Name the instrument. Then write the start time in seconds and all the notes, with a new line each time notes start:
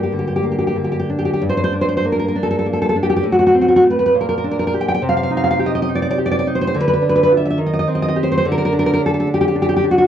nylon-string guitar
Already playing: G2 A#3
0.03 G4
0.12 D3
0.19 G4
0.27 G4
0.36 G4
0.43 A#3
0.52 G4
0.58 G4
0.67 G4
0.76 D3
0.84 G4
0.92 G4
1.00 G4
1.10 D4
1.19 G4
1.25 G4
1.34 G4
1.42 G2
1.50 C5
1.57 C5
1.64 C5
1.72 D4
1.81 C5
1.89 C5
1.97 C5
2.05 A#3
2.12 A#4
2.19 A#4
2.28 A#4
2.36 D4
2.43 A4
2.51 A4
2.59 A4
2.66 A#3
2.73 A4
2.82 A4
2.89 A4
2.96 D4
3.03 G4
3.10 G4
3.16 G4
3.23 A2
3.32 F#4
3.39 F#4
3.47 F#4
3.54 C4
3.61 F#4
3.68 F#4
3.76 F#4
3.83 A3
3.90 B4
3.99 B4
4.06 B4
4.14 A#2
4.21 A#4
4.29 A#4
4.38 A#4
4.44 D4
4.51 A#4
4.59 A#4
4.67 A#4
4.74 G4
4.81 G5
4.88 G5
4.94 G5
5.02 C3
5.09 F5
5.17 F5
5.23 F5
5.30 D#4
5.37 F5
5.44 F5
5.51 F5
5.59 G4
5.66 D#5
5.75 D#5
5.82 D#5
5.89 D#4
5.95 D5
6.02 D5
6.10 D5
6.18 G4
6.26 D5
6.31 D5
6.39 D5
6.47 D#4
6.55 C5
6.61 C5
6.67 C5
6.75 D3
6.80 B4
6.88 B4
6.93 B4
7.02 D4
7.09 B4
7.16 B4
7.23 B4
7.32 F4
7.37 E5
7.46 E5
7.51 E5
7.58 D#3
7.67 D#5
7.74 D#5
7.79 D#5
7.87 C4
7.95 D#5
8.02 D#5
8.08 D#5
8.16 G4
8.23 C5
8.32 C5
8.38 C5
8.45 D3
8.52 A#4
8.58 A#4
8.65 A#4
8.73 D4
8.79 A#4
8.86 A#4
8.94 A#4
9.01 D4
9.06 A4
9.14 A4
9.20 A4
9.27 D4
9.34 G4
9.41 G4
9.48 G4
9.56 D4
9.62 G4
9.69 G4
9.77 G4
9.84 D4
9.91 F#4
9.98 F#4